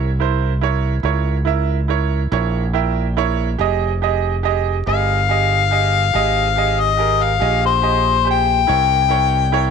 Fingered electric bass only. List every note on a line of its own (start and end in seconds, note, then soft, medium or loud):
0.00 1.00 C2 loud
1.03 2.27 C#2 medium
2.32 3.55 A#1 loud
3.59 4.82 F1 medium
4.87 6.10 G1 loud
6.15 7.38 G#1 medium
7.42 8.65 A#1 loud
8.69 9.71 C2 loud